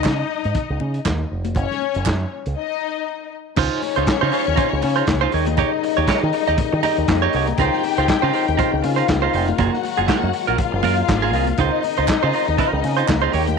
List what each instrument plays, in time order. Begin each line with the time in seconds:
Already playing: string section D#4 D#5
0.04 fingered electric bass C#3, kick, snare, clap, closed hi-hat, high conga
0.07 clap
0.44 fingered electric bass G#2, closed hi-hat
0.55 kick, closed hi-hat, muted conga, low conga
0.70 fingered electric bass C#2
0.80 fingered electric bass C#3, muted conga
0.94 closed hi-hat
1.05 fingered electric bass D#2, kick, snare, clap, closed hi-hat, high conga
1.31 fingered electric bass F1
1.45 closed hi-hat, high conga
1.55 fingered electric bass F#1, string section C#4 C#5, kick, closed hi-hat, muted conga
1.71 snare
1.81 muted conga
1.94 fingered electric bass F#1, closed hi-hat
2.05 fingered electric bass F#2, kick, snare, clap, closed hi-hat, high conga
2.08 clap
2.46 fingered electric bass C#2, closed hi-hat
2.56 string section D#4 D#5
3.56 fingered electric bass C#2, french horn section C#3 F3 C#4 D#4, string section C#4 C#5, clean electric guitar D#4 F4 C5, kick, crash, muted conga
3.82 muted clean electric guitar stroke, open hi-hat, muted conga
3.96 fingered electric bass C#2, clean electric guitar D#4 F4 C5, closed hi-hat
4.07 muted clean electric guitar stroke, kick, snare, clap, closed hi-hat, high conga
4.21 fingered electric bass C#3, clean electric guitar D#4 F4 C5
4.32 clean electric guitar D#4 F4 C5, open hi-hat
4.46 fingered electric bass D#2, muted clean electric guitar stroke, closed hi-hat
4.56 clean electric guitar D#4 F4 C5, kick, closed hi-hat, muted conga, low conga
4.71 fingered electric bass C#2, muted clean electric guitar stroke
4.82 fingered electric bass C#3, muted clean electric guitar stroke, open hi-hat, muted conga
4.96 clean electric guitar D#4 F4 C5, closed hi-hat
5.07 fingered electric bass C#2, kick, snare, clap, closed hi-hat, high conga
5.21 clean electric guitar D#4 F4 C5
5.32 fingered electric bass D#2, french horn section G3 A#3, clean electric guitar D#4 G4 C#5, string section D#4 D#5, open hi-hat
5.46 muted clean electric guitar stroke, closed hi-hat, high conga
5.57 clean electric guitar D#4 G4 C#5, kick, closed hi-hat, muted conga
5.72 muted clean electric guitar stroke
5.83 muted clean electric guitar stroke, open hi-hat
5.96 fingered electric bass D#2, clean electric guitar D#4 G4 C#5, closed hi-hat
6.07 clean electric guitar D#4 G4 C#5, kick, snare, clap, closed hi-hat, high conga
6.23 fingered electric bass D#3, muted clean electric guitar stroke
6.33 muted clean electric guitar stroke, open hi-hat
6.47 fingered electric bass D#2, clean electric guitar D#4 G4 D#5, closed hi-hat
6.58 muted clean electric guitar stroke, muted fingered electric bass stroke, kick, closed hi-hat, muted conga, low conga
6.73 fingered electric bass D#3, muted clean electric guitar stroke
6.83 clean electric guitar D#4 G4 D#5, open hi-hat, muted conga, low conga
6.97 fingered electric bass D#2, muted clean electric guitar stroke, closed hi-hat
7.08 fingered electric bass F2, muted clean electric guitar stroke, kick, snare, clap, closed hi-hat, high conga
7.22 clean electric guitar D#4 G4 C#5
7.33 fingered electric bass C2, clean electric guitar D#4 G4 C#5, open hi-hat
7.47 muted clean electric guitar stroke, closed hi-hat, high conga
7.58 fingered electric bass C#2, french horn section C#3 D#3 C4, clean electric guitar D#4 F4 C5, string section G4 G5, kick, closed hi-hat, muted conga
7.73 snare
7.83 muted clean electric guitar stroke, open hi-hat, muted conga
7.97 fingered electric bass C#2, clean electric guitar D#4 F4 C5, closed hi-hat
8.08 kick, snare, clap, closed hi-hat, high conga
8.22 fingered electric bass C#3, clean electric guitar D#4 F4 C5
8.33 clean electric guitar D#4 F4 C5, open hi-hat
8.47 fingered electric bass D#2, muted clean electric guitar stroke, closed hi-hat
8.57 clean electric guitar D#4 F4 C5, kick, closed hi-hat, muted conga, low conga
8.72 fingered electric bass C#2, muted clean electric guitar stroke
8.83 fingered electric bass C#3, string section F4 F5, muted clean electric guitar stroke, open hi-hat, muted conga
8.96 clean electric guitar D#4 F4 C5, closed hi-hat
9.08 fingered electric bass C#2, muted clean electric guitar stroke, kick, snare, clap, closed hi-hat, high conga
9.22 clean electric guitar D#4 F4 C5
9.33 fingered electric bass F1, clean electric guitar D#4 F4 C5, open hi-hat
9.48 muted clean electric guitar stroke, closed hi-hat, high conga
9.58 fingered electric bass F#1, french horn section F#3 G#3 A#3, clean electric guitar A#3 F4 G#4, string section F#4 F#5, kick, closed hi-hat, muted conga
9.73 muted clean electric guitar stroke, snare
9.83 muted clean electric guitar stroke, open hi-hat, muted conga
9.97 fingered electric bass F#1, clean electric guitar A#3 F4 G#4, closed hi-hat
10.08 clean electric guitar A#3 F4 G#4, kick, snare, clap, closed hi-hat, high conga
10.22 fingered electric bass F#2, muted clean electric guitar stroke
10.33 muted clean electric guitar stroke, open hi-hat
10.47 fingered electric bass A#1, clean electric guitar A#3 F4 A#4, closed hi-hat
10.58 string section F4 F5, muted clean electric guitar stroke, kick, closed hi-hat, muted conga, low conga
10.72 fingered electric bass F#1, muted clean electric guitar stroke
10.83 fingered electric bass F#2, clean electric guitar A#3 F4 A#4, open hi-hat, muted conga, low conga
10.97 muted clean electric guitar stroke, closed hi-hat
11.08 fingered electric bass G#1, muted clean electric guitar stroke, kick, snare, clap, closed hi-hat, high conga
11.22 clean electric guitar A#3 F4 G#4
11.33 fingered electric bass C2, clean electric guitar A#3 F4 G#4, open hi-hat
11.47 muted clean electric guitar stroke, closed hi-hat, high conga
11.58 fingered electric bass C#2, french horn section C#3 C4 D#4, string section D#4 D#5, clean electric guitar D#4 F4 C5, kick, closed hi-hat, muted conga
11.83 muted clean electric guitar stroke, open hi-hat, muted conga
11.97 fingered electric bass C#2, clean electric guitar D#4 F4 C5, closed hi-hat
12.08 muted clean electric guitar stroke, kick, snare, clap, closed hi-hat, high conga
12.10 clap
12.23 fingered electric bass C#3, clean electric guitar D#4 F4 C5
12.33 clean electric guitar D#4 F4 C5, open hi-hat
12.48 fingered electric bass D#2, muted clean electric guitar stroke, closed hi-hat
12.58 clean electric guitar D#4 F4 C5, kick, closed hi-hat, muted conga, low conga
12.72 fingered electric bass C#2, muted clean electric guitar stroke
12.83 fingered electric bass C#3, muted clean electric guitar stroke, open hi-hat, muted conga
12.97 clean electric guitar D#4 F4 C5, closed hi-hat
13.07 fingered electric bass C#2, muted clean electric guitar stroke, kick, snare, clap, closed hi-hat, high conga
13.10 clap
13.22 clean electric guitar D#4 F4 C5
13.32 fingered electric bass D#2, french horn section G3 A#3 D#4, clean electric guitar D#4 G4 C#5, string section G4 G5, open hi-hat
13.46 muted clean electric guitar stroke, closed hi-hat, high conga